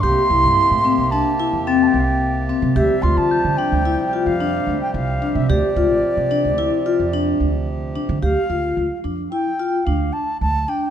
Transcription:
0.01 C2 C3 A#3 G4 C6
0.30 C2 E4
0.44 G2
0.71 A2
0.85 C4
0.98 C2
1.11 D4 A5
1.40 E4
1.53 E2
1.66 C4 G5 A6
1.83 A5
1.87 G5
1.94 C2
2.00 F5
2.04 G5
2.49 C4
2.62 C3
2.75 D2 F3 G3 G4 E5
3.02 D2 F4 C6
3.17 D3 A5
3.31 G6
3.44 D3
3.57 D4 G5
3.72 D2
3.85 E4
4.13 F4
4.26 F2 F5
4.41 D4
4.67 D2
4.81 G5
4.94 C2 F5
5.22 D4
5.35 C3 E5
5.49 D2 G4 D5
5.76 D2 F4
5.90 A1
6.17 C3
6.31 D4
6.45 D2
6.58 E4
6.86 F4
7.00 F2
7.13 D4
7.40 D2
7.96 D4
8.09 D3
8.22 D2 G4 F5
8.50 D2 F4
8.77 D2
9.04 F2 D4
9.31 E4 G5
9.60 F4
9.85 D2 D4 F5
10.13 A5
10.41 D2 A5
10.68 D4 G5

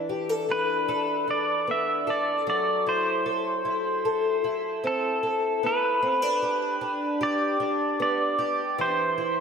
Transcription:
Already playing: E3 D4
0.09 G4
0.29 A4
0.49 D4 B4
0.88 A4
1.28 D4 D5
1.67 B3 E5
2.07 A4 D5
2.47 F#3 D5
2.87 E4 C5
3.26 A4
3.65 E4
4.05 A4
4.44 E4
4.84 C4 A4
5.23 A4
5.63 B3 B4
6.02 C4
6.22 D4
6.42 G4
6.81 D4
7.21 G4 D5
7.60 D4
8.00 B3 D5
8.39 G4
8.78 E3 C5
9.18 E4

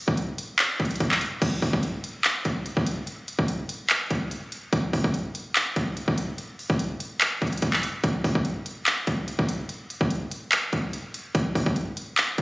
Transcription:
0.08 kick
0.17 closed hi-hat
0.38 closed hi-hat
0.59 clap, closed hi-hat
0.80 kick, closed hi-hat
0.85 closed hi-hat
0.91 closed hi-hat
0.96 closed hi-hat
1.00 kick, closed hi-hat
1.11 clap
1.21 closed hi-hat
1.42 kick, closed hi-hat, crash
1.62 kick, open hi-hat
1.73 kick
1.83 closed hi-hat
2.04 closed hi-hat
2.24 clap, closed hi-hat
2.45 kick, closed hi-hat
2.66 closed hi-hat
2.77 kick
2.87 closed hi-hat
3.07 closed hi-hat
3.28 closed hi-hat
3.39 kick
3.48 closed hi-hat
3.69 closed hi-hat
3.90 clap, closed hi-hat
4.10 kick, closed hi-hat
4.31 closed hi-hat
4.52 closed hi-hat
4.73 kick, closed hi-hat
4.93 kick, open hi-hat
5.04 kick
5.14 closed hi-hat
5.35 closed hi-hat
5.56 clap, closed hi-hat
5.76 kick, closed hi-hat
5.97 closed hi-hat
6.08 kick
6.18 closed hi-hat
6.38 closed hi-hat
6.59 open hi-hat
6.70 kick
6.79 closed hi-hat
7.00 closed hi-hat
7.21 clap, closed hi-hat
7.42 kick, closed hi-hat
7.47 closed hi-hat
7.53 closed hi-hat
7.57 closed hi-hat
7.62 kick, closed hi-hat
7.73 clap
7.83 closed hi-hat
8.04 kick, closed hi-hat
8.24 kick, open hi-hat
8.35 kick
8.45 closed hi-hat
8.66 closed hi-hat
8.86 clap, closed hi-hat
9.07 kick, closed hi-hat
9.28 closed hi-hat
9.39 kick
9.49 closed hi-hat
9.69 closed hi-hat
9.90 closed hi-hat
10.01 kick
10.10 closed hi-hat
10.31 closed hi-hat
10.52 clap, closed hi-hat
10.73 kick, closed hi-hat
10.93 closed hi-hat
11.14 closed hi-hat
11.35 kick, closed hi-hat
11.55 kick, open hi-hat
11.66 kick
11.76 closed hi-hat
11.97 closed hi-hat
12.17 clap, closed hi-hat
12.38 kick, closed hi-hat

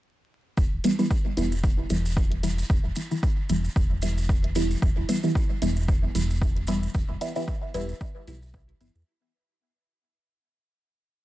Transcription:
0.57 E1, kick, maracas
0.72 E1
0.84 E3 G3 B3 E4, closed hi-hat, maracas
0.99 E3 G3 B3 E4, maracas
1.11 kick, maracas
1.37 E1 E3 G3 B3 E4, closed hi-hat, maracas
1.52 maracas
1.63 kick, maracas
1.90 E1 E3 G3 B3 E4, closed hi-hat, maracas
2.05 maracas
2.17 kick, maracas
2.32 closed hi-hat
2.43 E3 G3 B3 E4, closed hi-hat, maracas
2.58 maracas
2.70 E1, kick
2.85 E1
2.95 E3 G3 B3 E4, closed hi-hat, maracas
3.11 E3 G3 B3 E4, maracas
3.23 kick, maracas
3.49 E1 E3 G3 B3 E4, closed hi-hat, maracas
3.64 maracas
3.76 E1, kick, maracas
4.02 E3 G3 B3 E4, closed hi-hat, maracas
4.18 maracas
4.29 kick, maracas
4.44 closed hi-hat
4.55 E3 G3 B3 E4, closed hi-hat, maracas
4.71 maracas
4.82 E1, kick, maracas
4.97 E1
5.09 E3 G3 B3 E4, closed hi-hat, maracas
5.23 E3 G3 B3 E4, maracas
5.35 kick, maracas
5.62 E1 E3 G3 B3 E4, closed hi-hat, maracas
5.76 maracas
5.88 kick, maracas
6.15 E1 E3 G3 B3 E4, closed hi-hat, maracas
6.30 maracas
6.42 kick, maracas
6.56 closed hi-hat
6.67 E3 G3 B3 E4, closed hi-hat, maracas
6.83 maracas
6.94 E1, kick, maracas
7.10 E1
7.21 E3 G3 B3 E4, closed hi-hat, maracas
7.36 E3 G3 B3 E4, maracas
7.48 kick, maracas
7.74 E1 E3 G3 B3 E4, closed hi-hat, maracas
7.89 maracas
8.01 kick, maracas
8.27 B1 E3 G3 B3 E4, closed hi-hat, maracas
8.42 maracas
8.54 kick, maracas
8.69 closed hi-hat
8.81 G1 E3 G3 B3 E4, closed hi-hat, maracas
8.95 E2, maracas

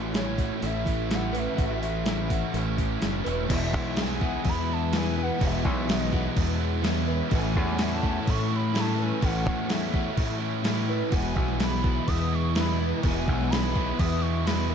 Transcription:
Already playing: A1 A2 E3 A3 C#4 E4 F#4
0.13 E3 A3 C#4 E4 G#4 C#5, snare, open hi-hat
0.37 A3 C#4 E4 F#4, kick, open hi-hat
0.61 A1 A2 E3 A3 C#4 E4, open hi-hat
0.65 E5
0.85 A3 C#4 E4, kick, open hi-hat
1.07 E3 A3 C#4 E4, open hi-hat
1.11 F#5, snare
1.32 A2 E3 A3 C#4 E4 B4, open hi-hat
1.36 A3 E5
1.56 A1 A2 E3 A3 C#4 E4 F#4, kick, open hi-hat
1.81 A3 C#4 E4, open hi-hat
2.03 E3 A3 G#4, snare, open hi-hat
2.07 C#4 E4
2.28 C#4 E4 F#4, kick, open hi-hat
2.32 A3
2.53 A1 A2 E3 A3 C#4 E4, open hi-hat
2.77 A3 C#4 E4, kick, open hi-hat
3.00 F#1 E3 A3 C#4 E4, snare, open hi-hat
3.24 E1 A2 E3 A3 C#4 E4 B4, open hi-hat
3.28 A3
3.48 E1 E2 B2 E3 G#3 B3 E4 F#4 B4 E5, kick, crash
3.53 E5
3.72 B1 E3 G#3 B3 E4, kick
3.95 E3 G#3 B3 E4 G#4, snare, crash
4.02 G#5
4.20 E2 B2 E3 G#3 B3 E4 F#4, kick
4.44 E2 E4, kick, crash
4.49 B5
4.69 G#3 B3 E4 A5
4.92 E2 B2 E3 G#3 B3 E4, snare, crash
4.98 G#5
5.16 E3 G#3 B3 E4 B4
5.23 F#5
5.38 E1 E2 B2 E3 G#3 B3 E4 F#4 C#5, kick, crash
5.46 E5
5.63 B1 E3 G#3 B3 E4, kick
5.87 E3 G#3 B3 E4 G#4, snare, crash
5.92 D#5
6.10 E2 B2 E3 G#3 B3 E4 F#4, kick
6.36 E2 E4, kick, crash
6.59 G#3 B3 E4
6.82 E2 B2 E3 G#3 B3 E4, snare, crash
7.06 E3 G#3 B3 E4 B4
7.31 A1 A2 E3 A3 C#4 E4 F#4 A4 G#5, kick, crash
7.55 E2 A3 C#4 E4, kick
7.68 snare
7.78 E3 A3 C#4 E4 G#4, snare, crash
7.83 A5
8.00 E3 A3 C#4 E4 F#4, kick
8.04 A2
8.25 A2 E4, kick, crash
8.29 C#6
8.50 A3 C#4 E4
8.56 B5
8.73 A2 E3 A3 C#4 E4, snare, crash
8.80 A5
8.96 A3 C#4 E4 B4
9.00 G#5, snare
9.20 A1 A2 E3 A3 C#4 E4 F#4, kick, crash
9.25 F#5
9.45 E2 A3 C#4 E4, kick
9.69 E3 A3 C#4 E4 G#4 E5, snare, crash
9.92 A2 E3 A3 C#4 E4 F#4, kick
10.17 A2 E4, kick, crash
10.39 A3 C#4 E4
10.63 A2 E3 A3 C#4 E4, snare, crash
10.88 A3 C#4 E4 B4
11.11 E1 E2 B2 E3 G#3 B3 E4 F#4 B4 D#5 G#5, kick, crash
11.34 B1 E3 G#3 B3 E4, kick
11.48 snare
11.59 E3 G#3 B3 E4 G#4 B5, snare, crash
11.83 E2 B2 E3 G#3 B3 E4 F#4, kick
12.08 E2 E4 D#6, kick, crash
12.31 G#3 B3 E4 C#6
12.54 E2 B2 E3 G#3 B3 E4, snare, crash
12.59 B5
12.79 E3 G#3 B3 E4 B4
13.03 E1 E2 B2 E3 G#3 B3 E4 F#4 G#5, kick, crash
13.27 B1 E3 G#3 B3 E4, kick
13.41 snare
13.50 E3 G#3 B3 E4 G#4 B5, snare, crash
13.75 E2 B2 E3 G#3 B3 E4 F#4, kick
13.98 E2 E4 D#6, kick, crash
14.21 G#3 B3 E4 C#6
14.45 E2 B2 E3 G#3 B3 E4 B5, snare, crash
14.68 E3 G#3 B3 E4 B4

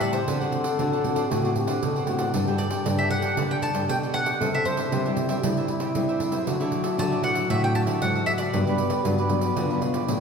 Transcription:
Already playing: A2 E3 G4
0.00 G3 C4 E4 G4 C5 D5 E5 A5, pandeiro
0.12 C5 E5 A5, pandeiro
0.27 D3 A3 C4 D4 F#4 A4 C5 D5 F#5, pandeiro
0.40 D3 A3 C4 F#4 C5 D5 F#5, pandeiro
0.52 pandeiro
0.64 C5 D5 F#5, pandeiro
0.78 A2 D3 A3 C4 D4 F#4 C5 D5 F#5, pandeiro
0.92 C5 D5 F#5, pandeiro
1.04 A3 C4 F#4, pandeiro
1.15 C5 D5 F#5, pandeiro
1.30 A2 D3 D4 F#4 C5 D5 F#5, pandeiro
1.44 A3 C4 F#4 C5 D5 F#5, pandeiro
1.55 G4, muted cavaquinho stroke, pandeiro
1.67 D3 C5 D5 F#5, pandeiro
1.82 A2 B2 A3 C4 F#4 A4, pandeiro
1.96 C5 D5 F#5, pandeiro
2.07 A2 A3 C4 D4 F#4 C5 D5 F#5, pandeiro
2.19 C5 D5 F#5, pandeiro
2.34 G2 G3 D4 G4 A4 D5 G5, pandeiro
2.47 G2 D4 G4 A4 D5 G5, pandeiro
2.58 D5, pandeiro
2.71 A4 D5 G5, pandeiro
2.85 G2 D3 D4 G4 A4 D5 G5, pandeiro
2.98 A4 D5 E5 G5, pandeiro
3.10 D4 G4 A4 F#5, pandeiro
3.22 A4 D5 G5, pandeiro
3.37 D3 G3 D4 A4 D5 G5, pandeiro
3.51 D4 G4 A4 D5 G5, pandeiro
3.62 A5, muted cavaquinho stroke, pandeiro
3.74 G2 A4 D5 G5, pandeiro
3.88 B2 D3 D4 G4 A4 G5, pandeiro
4.03 A4 D5 G5, pandeiro
4.14 D4 G4 A4 D5 F#5 G5, pandeiro
4.26 A4 D5 G5, pandeiro
4.40 C3 G3 D4 E4 G4 A4 C5 E5, pandeiro
4.54 C3 G4 C5 E5, pandeiro
4.65 G3 D4 E4 C5, pandeiro
4.77 G4 C5 E5, pandeiro
4.92 C3 G3 D4 G4 C5 E5, pandeiro
5.06 G3 D4 E4 G4 C5 E5, pandeiro
5.17 pandeiro
5.29 G3 D4 E4 G4 C5 E5, pandeiro
5.43 C3 G3 D4 E4 G4 C5 E5, pandeiro
5.57 G4 C5 E5, pandeiro
5.68 E4, muted cavaquinho stroke, pandeiro
5.80 C3 G4 C5 E5, pandeiro
5.95 C3 G3 D4 E4, pandeiro
6.09 G4 C5 E5, pandeiro
6.19 D4 G4 C5 E5, pandeiro
6.32 F#3 A3 E4 G4 C5 E5, pandeiro
6.46 D3 F#4 A4 D5 E5, pandeiro
6.60 D3 F#3 A3 E4 A4 D5 E5, pandeiro
6.72 pandeiro
6.83 A4 D5 E5, pandeiro
6.98 A2 D3 F#3 A3 E4 F#4 A4 D5 E5 A5, pandeiro
7.11 A4 D5 E5, pandeiro
7.23 F#3 A3 E4 F#5, pandeiro
7.34 A4 D5 E5, pandeiro
7.49 A2 D3 F#4 A4 D5 E5, pandeiro
7.63 F#3 A3 E4 A4 D5 E5 G5, pandeiro
7.74 A5, muted cavaquinho stroke, pandeiro
7.86 D3 A4 D5 E5, pandeiro
8.02 G#2 F#3 A3 E4 F#5, pandeiro
8.15 A4 D5 E5, pandeiro
8.26 F#3 A3 E4 F#4 A4 D5 E5, pandeiro
8.38 A4 D5 E5, pandeiro
8.53 G2 F#3 B3 D4 F#4 G4 B4 D5, pandeiro
8.67 G2 B3 D4 G4 B4 D5, pandeiro
8.78 pandeiro
8.90 G4 B4 D5, pandeiro
9.05 G2 D3 F#3 B3 D4 F#4 G4 B4 D5, pandeiro
9.18 G4 B4 D5, pandeiro
9.29 F#3 B3 D4, pandeiro
9.41 G4 B4 D5, pandeiro
9.56 G2 D3 F4 F#4 G4 B4 D5, pandeiro
9.70 F#3 B3 D4 G4 B4 D5, pandeiro
9.81 B2, muted cavaquinho stroke, pandeiro
9.94 G4 B4 D5, pandeiro
10.07 A2 D3 F#3 B3 D4, pandeiro

